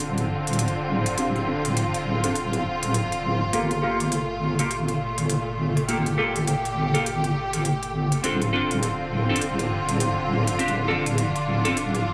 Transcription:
Already playing: wobble bass D1, string section D3 C4 F4
0.00 closed hi-hat
0.18 closed hi-hat
0.47 closed hi-hat
0.53 closed hi-hat
0.59 closed hi-hat
0.68 closed hi-hat
1.06 closed hi-hat
1.17 clean electric guitar C4 D4 F4 G4, closed hi-hat
1.36 closed hi-hat
1.47 clean electric guitar C4 D4 F4 A4
1.65 closed hi-hat
1.77 closed hi-hat
1.94 closed hi-hat
2.24 clean electric guitar C4 D4 F4 A4, closed hi-hat
2.35 closed hi-hat
2.53 closed hi-hat
2.83 closed hi-hat
2.94 closed hi-hat
3.12 closed hi-hat
3.53 wobble bass G1, string section A#2 A3, clean electric guitar A#3 F4 G4 A4, closed hi-hat
3.71 closed hi-hat
3.82 clean electric guitar A#3 F4 G4 A4
4.00 closed hi-hat
4.12 closed hi-hat
4.59 clean electric guitar A#3 F4 G4 A4, closed hi-hat
4.71 closed hi-hat
4.88 closed hi-hat
5.18 closed hi-hat
5.30 closed hi-hat
5.77 closed hi-hat
5.88 clean electric guitar A#3 F4 G4 A4, string section G4, closed hi-hat
6.06 closed hi-hat
6.18 clean electric guitar A#3 F4 G4 A4
6.36 closed hi-hat
6.47 closed hi-hat
6.65 closed hi-hat
6.94 clean electric guitar A#3 F4 G4 A4, closed hi-hat
7.06 closed hi-hat
7.24 closed hi-hat
7.53 closed hi-hat
7.65 closed hi-hat
7.83 closed hi-hat
8.12 closed hi-hat
8.23 wobble bass D1, string section D3 C4 F4, clean electric guitar C4 D4 F4 A4, closed hi-hat
8.42 closed hi-hat
8.53 clean electric guitar C4 D4 F4 A4
8.71 closed hi-hat
8.83 closed hi-hat
9.29 clean electric guitar C4 D4 F4 A4
9.36 closed hi-hat
9.42 closed hi-hat
9.59 closed hi-hat
9.89 closed hi-hat
10.00 closed hi-hat
10.47 closed hi-hat
10.59 clean electric guitar C4 D4 F4 G4, string section D4, closed hi-hat
10.68 closed hi-hat
10.88 clean electric guitar C4 D4 F4 A4
11.06 closed hi-hat
11.18 closed hi-hat
11.36 closed hi-hat
11.65 clean electric guitar C4 D4 F4 A4, closed hi-hat
11.77 closed hi-hat
11.95 closed hi-hat

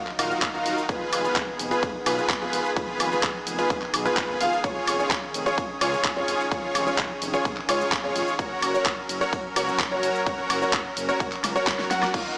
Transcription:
Already playing: analog synth pad D#3 F#3 D#4
0.07 clap
0.19 analog synth bass A#1, supersaw synth D#4 F4 F#4 A#4 F5, grand piano F5, open hi-hat, ride, cabasa, high woodblock
0.31 cabasa
0.42 analog synth bass D#1, kick, clap, ride, cabasa
0.54 analog synth bass D#1, supersaw synth D#4 F4 F#4 A#4 F5, grand piano F5
0.66 analog synth bass D#1, open hi-hat, ride, cabasa
0.78 cabasa
0.89 analog synth bass F1, analog synth pad B3 G#4, supersaw synth F4 G#4 B4, grand piano B4, kick, ride, cabasa
1.13 analog synth bass F1, open hi-hat, ride, cabasa, high woodblock
1.24 supersaw synth F4 G#4 B4, grand piano B4, cabasa
1.36 analog synth bass F1, kick, clap, ride, cabasa
1.59 analog synth bass F1, open hi-hat, ride, cabasa
1.71 supersaw synth F4 G#4 B4, grand piano B4, cabasa
1.83 analog synth bass F1, kick, ride, cabasa
2.06 analog synth bass B1, supersaw synth F4 G#4 B4, grand piano B4, open hi-hat, ride, cabasa, high woodblock
2.19 cabasa
2.30 analog synth bass F1, kick, clap, ride, cabasa
2.41 analog synth bass F1, supersaw synth F4 G#4 B4, grand piano B4
2.53 analog synth bass F1, open hi-hat, ride, cabasa
2.65 cabasa
2.76 analog synth bass F1, supersaw synth F4 G#4 B4, grand piano B4, kick, ride, cabasa
3.00 analog synth bass F1, open hi-hat, ride, cabasa, high woodblock
3.12 supersaw synth F4 G#4 B4, grand piano B4, cabasa
3.23 analog synth bass F1, kick, clap, ride, cabasa
3.47 analog synth bass F1, open hi-hat, ride, cabasa
3.59 supersaw synth F4 G#4 B4, grand piano B4, cabasa
3.70 analog synth bass F1, kick, ride, cabasa
3.82 clap
3.94 analog synth bass B1, open hi-hat, ride, cabasa, high woodblock
4.05 supersaw synth F4 G#4 B4, grand piano B4, cabasa
4.17 analog synth bass F1, kick, clap, ride, cabasa
4.29 analog synth bass F1
4.41 analog synth bass F1, supersaw synth F4 G#4 F5, grand piano F5, open hi-hat, ride, cabasa
4.53 cabasa
4.64 analog synth bass F1, analog synth pad C#4, supersaw synth F4 G#4 C#5, grand piano C#5, kick, ride, cabasa
4.87 analog synth bass F1, open hi-hat, ride, cabasa, high woodblock
4.99 supersaw synth F4 G#4 C#5, grand piano C#5, cabasa
5.11 analog synth bass F1, kick, clap, ride, cabasa
5.34 analog synth bass F1, open hi-hat, ride, cabasa
5.46 supersaw synth F4 G#4 C#5, grand piano C#5, cabasa
5.58 analog synth bass F1, kick, ride, cabasa
5.81 analog synth bass C#2, supersaw synth F4 G#4 C#5, grand piano C#5, open hi-hat, ride, cabasa, high woodblock
5.94 cabasa
6.05 analog synth bass F1, kick, clap, ride, cabasa
6.16 analog synth bass F1, supersaw synth F4 G#4 C#5, grand piano C#5
6.28 analog synth bass F1, open hi-hat, ride, cabasa
6.40 cabasa
6.52 analog synth bass F1, supersaw synth F4 G#4 C#5, grand piano C#5, kick, ride, cabasa
6.75 analog synth bass F1, open hi-hat, ride, cabasa, high woodblock
6.87 supersaw synth F4 G#4 C#5, grand piano C#5, cabasa
6.98 analog synth bass F1, kick, clap, ride, cabasa
7.22 analog synth bass F1, open hi-hat, ride, cabasa
7.34 supersaw synth F4 G#4 C#5, grand piano C#5, cabasa
7.45 analog synth bass F1, kick, ride, cabasa
7.57 clap
7.69 analog synth bass C#2, supersaw synth F4 G#4 C#5, grand piano C#5, open hi-hat, ride, cabasa, high woodblock
7.81 cabasa
7.92 analog synth bass F1, kick, clap, ride, cabasa
8.04 analog synth bass F1, supersaw synth F4 G#4 C#5, grand piano C#5
8.16 analog synth bass F1, open hi-hat, ride, cabasa
8.28 cabasa
8.39 analog synth bass F#1, analog synth pad F#3 C#4 A#4, supersaw synth F#4 A#4 C#5, grand piano C#5, kick, ride, cabasa
8.62 analog synth bass F#1, open hi-hat, ride, cabasa, high woodblock
8.74 supersaw synth F#4 A#4 C#5, grand piano C#5, cabasa
8.86 analog synth bass F#1, kick, clap, ride, cabasa
9.09 analog synth bass F#1, open hi-hat, ride, cabasa
9.21 supersaw synth F#4 A#4 C#5, grand piano C#5, cabasa
9.33 analog synth bass F#1, kick, ride, cabasa
9.56 analog synth bass C#2, supersaw synth F#4 A#4 C#5, grand piano C#5, open hi-hat, ride, cabasa, high woodblock
9.69 cabasa
9.80 analog synth bass F#1, kick, clap, ride, cabasa
9.91 analog synth bass F#1, supersaw synth F#4 A#4 C#5, grand piano C#5
10.03 analog synth bass F#1, open hi-hat, ride, cabasa
10.15 cabasa
10.26 analog synth bass F#1, supersaw synth F#4 A#4 C#5, grand piano C#5, kick, ride, cabasa
10.50 analog synth bass F#1, open hi-hat, ride, cabasa, high woodblock
10.62 supersaw synth F#4 A#4 C#5, grand piano C#5, cabasa
10.73 analog synth bass F#1, kick, clap, ride, cabasa
10.97 analog synth bass F#1, open hi-hat, ride, cabasa
11.09 supersaw synth F#4 A#4 C#5, grand piano C#5, cabasa
11.20 analog synth bass F#1, kick, ride, cabasa
11.32 clap, open hi-hat
11.44 analog synth bass C#2, snare, open hi-hat, ride, cabasa, high woodblock
11.55 supersaw synth F#4 A#4 C#5, grand piano C#5, cabasa
11.67 analog synth bass F#1, kick, snare, clap, ride, cabasa
11.79 analog synth bass F#1, snare
11.91 analog synth bass F#2, supersaw synth F#4 A#4 F#5, grand piano F#5, snare, open hi-hat, ride, cabasa
12.02 snare, cabasa, high woodblock
12.14 analog synth bass D#1, analog synth pad F#3 D#4 F5, supersaw synth D#4 F4 F#4 A#4 F5, grand piano F5, kick, crash, ride, cabasa
12.26 cabasa

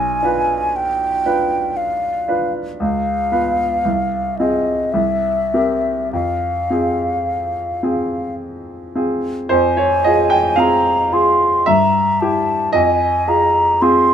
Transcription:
Already playing: grand piano B1, flute G#5
0.23 grand piano D4 F4 B4
0.76 flute G5
1.26 grand piano D4 F4 B4
1.77 flute F5
2.28 grand piano D4 F4 B4
2.80 grand piano C#2, flute F5
3.32 grand piano B3 F4 B4
3.85 grand piano C2
4.39 grand piano C4 F4 G#4, flute D#5
4.92 grand piano C2, flute E5
5.54 grand piano C4 G4 A#4
6.13 grand piano F2, flute F5
6.70 grand piano C4 F4 G#4
7.83 grand piano C4 F4 G#4
8.95 grand piano C4 F4 G#4
9.49 grand piano F2 C5, flute G#5
9.77 grand piano C#5
10.04 grand piano F4 G#4 D#5
10.30 grand piano G5
10.56 grand piano C4 F4 G#4 F5, flute A#5
11.12 grand piano F4 G#4, flute C6
11.66 grand piano G2 E5, flute A#5
12.20 grand piano E4 G4, flute A5
12.72 grand piano F2 D#5, flute G#5
13.28 grand piano F4 G#4, flute A#5
13.82 grand piano C4 F4 G#4, flute C6

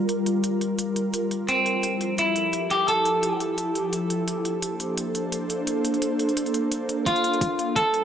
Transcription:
Already playing: ambient pad G3 F4 A#4
0.09 closed hi-hat
0.26 closed hi-hat
0.44 closed hi-hat
0.61 closed hi-hat
0.79 closed hi-hat
0.96 closed hi-hat
1.14 closed hi-hat
1.31 closed hi-hat
1.49 ambient pad F3 E4 G4 A4, clean electric guitar C4, closed hi-hat
1.66 closed hi-hat
1.83 closed hi-hat
2.01 closed hi-hat
2.18 clean electric guitar E4, closed hi-hat
2.36 closed hi-hat
2.53 closed hi-hat
2.70 clean electric guitar G4, closed hi-hat
2.88 clean electric guitar A4, closed hi-hat
3.05 closed hi-hat
3.23 closed hi-hat
3.40 closed hi-hat
3.58 closed hi-hat
3.75 closed hi-hat
3.93 closed hi-hat
4.10 ambient pad A#3 D4 A4 C5, closed hi-hat
4.28 closed hi-hat
4.45 closed hi-hat
4.62 closed hi-hat
4.80 closed hi-hat
4.97 closed hi-hat
5.15 closed hi-hat
5.32 closed hi-hat
5.50 closed hi-hat
5.67 closed hi-hat
5.85 closed hi-hat
5.94 closed hi-hat
6.02 closed hi-hat
6.19 closed hi-hat
6.29 closed hi-hat
6.37 closed hi-hat
6.46 closed hi-hat
6.54 closed hi-hat
6.72 closed hi-hat
6.89 closed hi-hat
7.06 ambient pad G3 A#3 F4, clean electric guitar F4, kick, closed hi-hat
7.16 closed hi-hat
7.24 closed hi-hat
7.33 closed hi-hat
7.41 kick, closed hi-hat
7.59 closed hi-hat
7.76 clean electric guitar A4, kick, closed hi-hat
7.94 closed hi-hat

